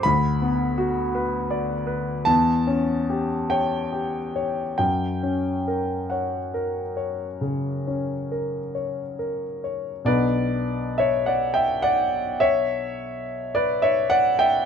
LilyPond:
\new Staff \with { instrumentName = "Grand piano" } { \time 4/4 \key b \minor \tempo 4 = 49 << { b''2 a''4 g''4 | g''4 fis''2~ fis''8 r8 | <b' d''>8. <cis'' e''>16 <d'' fis''>16 <e'' g''>16 <d'' fis''>8 <cis'' e''>4 <b' d''>16 <cis'' e''>16 <d'' fis''>16 <e'' g''>16 | } \\ { \tuplet 3/2 { d,8 b8 fis'8 b'8 d''8 b'8 e,8 cis'8 g'8 cis''8 g'8 cis''8 } | \tuplet 3/2 { fis,8 cis'8 ais'8 cis''8 ais'8 cis''8 cis8 cis'8 ais'8 cis''8 ais'8 cis''8 } | <b,, b d'>1 | } >> }